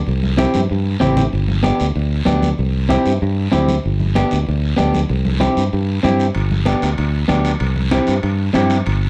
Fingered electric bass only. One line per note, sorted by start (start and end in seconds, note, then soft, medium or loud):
0.08 0.45 C2 medium
0.55 0.67 G2 medium
0.71 0.96 G2 medium
1.02 1.27 A1 medium
1.33 1.71 G1 medium
1.81 1.93 D2 medium
1.96 2.21 D2 medium
2.27 2.52 D2 medium
2.59 2.96 C2 medium
3.06 3.19 G2 medium
3.22 3.47 G2 medium
3.53 3.78 D2 medium
3.86 4.23 G1 medium
4.33 4.45 D2 medium
4.48 4.73 D2 medium
4.79 5.04 D2 medium
5.10 5.48 C2 medium
5.57 5.70 G2 medium
5.73 5.98 G2 medium
6.04 6.29 G2 medium
6.36 6.73 G1 medium
6.83 6.95 D2 medium
6.99 7.24 D2 medium
7.30 7.55 D2 medium
7.61 7.98 C2 medium
8.08 8.21 G2 medium
8.24 8.49 G2 medium
8.56 8.81 G2 medium
8.87 9.10 G1 medium